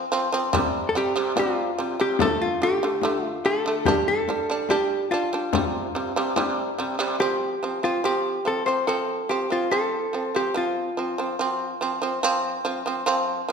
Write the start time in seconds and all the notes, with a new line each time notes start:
0.12 F3 C4
0.32 F3 C4
0.53 C3 G3, frame drum
0.89 A4
0.95 C3 G3 G4
1.16 C3 G3
1.36 C3 G3 F4, frame drum
1.78 C3 G3, frame drum
2.00 C3 G3 G4
2.19 D3 A3 A4, frame drum
2.42 F4
2.61 D3 A3 G4, frame drum
2.83 D3 A3
3.02 D3 A3, frame drum
3.24 F4
3.44 D3 A3 A4, frame drum
3.66 D3 A3
3.85 G3 D4 G4, frame drum
4.08 A4
4.28 G3 D4, frame drum
4.50 G3 D4
4.69 G3 D4 G4, frame drum
5.11 G3 D4 F4, frame drum
5.33 G3 D4
5.53 C3 G3, frame drum
5.94 C3 G3, frame drum
6.16 C3 G3
6.36 C3 G3, frame drum
6.79 C3 G3, frame drum
6.99 C3 G3
7.20 F3 C4 G4
7.63 F3 C4
7.83 F3 C4 F4
8.04 F3 C4 G4
8.45 F3 C4 A4
8.66 F3 C4 C5
8.87 F3 C4 A4
9.29 F3 C4 G4
9.50 F3 C4 F4
9.71 F3 C4 A4
10.13 F3 C4
10.35 F3 C4 G4
10.54 F3 C4 F4
10.97 F3 C4
11.18 F3 C4
11.39 F3 C4
11.44 F#4
11.68 F4
11.81 F3 C4
11.93 F#4
12.02 F3 C4
12.17 F4
12.23 F3 C4
12.65 F3 C4
12.86 F3 C4
13.06 F3 C4
13.49 F3